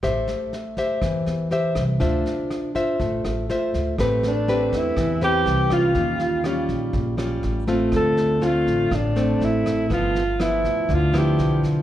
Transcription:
<<
  \new Staff \with { instrumentName = "Alto saxophone" } { \time 4/4 \key a \minor \tempo 4 = 122 r1 | r1 | r8 d'4 e'4 g'4 f'8~ | f'4. r2 r8 |
a'4 f'4 d'4 e'4 | f'4 e'4 f'8 g'4 r8 | }
  \new Staff \with { instrumentName = "Nylon-string guitar" } { \time 4/4 \key a \minor << { <g' c'' e''>4 r8 <g' c'' e''>4. <g' c'' e''>8 r8 | <f' c'' e''>4. <f' c'' e''>4. <f' c'' e''>4 | <c' g' b'>8 r8 <c' g' b'>4. <c' g' b'>4 <g cis' f'>8~ | <g cis' f'>4 <g cis' eis'>4. <g cis' eis'>4 <a c' eis'>8~ |
<a c' eis'>4 <a c' f'>4 r8 <a c'>4. | <f b>8 r8 <f b e'>4. <f b e'>4. | } \\ { a2 e2 | d'2 a2 | a2 e2 | dis2 r2 |
d2 a,2 | g,2 d2 | } >> }
  \new Staff \with { instrumentName = "Upright bass" } { \clef bass \time 4/4 \key a \minor a,,8 r4. e,8 e,8 r8 c,8 | d,8 r4. a,,8 a,,8 r8 d,8 | a,,4. e,8 e,4 c,4 | dis,4. ais,,8 ais,,4 a,,4 |
d,4. a,,8 a,,4 a,,4 | g,,4. d,8 d,4 b,,4 | }
  \new DrumStaff \with { instrumentName = "Drums" } \drummode { \time 4/4 <bd ss sn>8 sn8 sn8 <bd sn>8 <bd ss sn>8 sn8 sn8 <bd ss sn>8 | <bd sn>8 sn8 <ss sn>8 <bd sn>8 <bd sn>8 <ss sn>8 sn8 <bd sn>8 | <bd ss sn>8 sn8 sn8 <bd sn>8 <bd ss sn>8 sn8 sn8 <bd ss sn>8 | <bd sn>8 sn8 <ss sn>8 <bd sn>8 <bd sn>8 <ss sn>8 sn8 <bd sn>8 |
<bd ss sn>8 sn8 sn8 <bd sn>8 <bd ss sn>8 sn8 sn8 <bd ss sn>8 | <bd sn>8 sn8 <ss sn>8 <bd sn>8 <bd sn>8 <ss sn>8 sn8 <bd sn>8 | }
>>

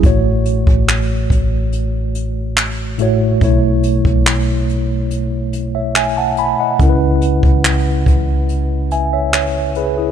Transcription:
<<
  \new Staff \with { instrumentName = "Tine electric piano" } { \time 4/4 \key cis \minor \tempo 4 = 71 << { r1 | r2 r8. <cis'' e''>16 <e'' gis''>16 <fis'' a''>16 <gis'' b''>16 <dis'' fis''>16~ | <dis'' fis''>16 r2 r16 <e'' gis''>16 <cis'' e''>16 cis''8 <gis' b'>16 <e' gis'>16 | } \\ { <a, a fis' cis''>4~ <a, a fis' cis''>16 r2 r16 <a, a fis' cis''>8 | <b, a e' cis''>4~ <b, a e' cis''>16 r2 r8. | <cis cis' e' ais' b'>4~ <cis cis' e' ais' b'>16 r2 r8. | } >> }
  \new Staff \with { instrumentName = "808-style bass" } { \clef bass \time 4/4 \key cis \minor a,,8. a,,8. a,,2~ a,,8 | b,,8. b,,2. r16 | cis,8. cis,8. cis,2~ cis,8 | }
  \new DrumStaff \with { instrumentName = "Drums" } \drummode { \time 4/4 <hh bd>8 hh16 bd16 <hc hh>8 <hh bd>8 hh8 hh8 <hc hh>8 hh8 | <hh bd>8 hh16 bd16 <hc hh>8 hh8 hh8 hh8 <hc hh>8 hh8 | <hh bd>8 hh16 bd16 hc8 <hh bd>8 hh8 hh8 <hc hh>8 hh8 | }
>>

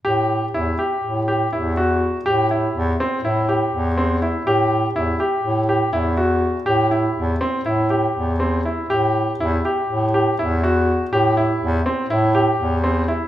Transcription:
<<
  \new Staff \with { instrumentName = "Grand piano" } { \time 9/8 \key a \dorian \tempo 4. = 81 g'4 e'8 g'4 g'8 e'8 fis'4 | g'8 e'4 c'8 e'8 g'4 c'8 e'8 | g'4 e'8 g'4 g'8 e'8 fis'4 | g'8 e'4 c'8 e'8 g'4 c'8 e'8 |
g'4 e'8 g'4 g'8 e'8 fis'4 | g'8 e'4 c'8 e'8 g'4 c'8 e'8 | }
  \new Staff \with { instrumentName = "Bass clarinet" } { \clef bass \time 9/8 \key a \dorian a,4 e,8 r8 a,4 e,4. | a,4 e,8 r8 a,4 e,4. | a,4 e,8 r8 a,4 e,4. | a,4 e,8 r8 a,4 e,4. |
a,4 e,8 r8 a,4 e,4. | a,4 e,8 r8 a,4 e,4. | }
>>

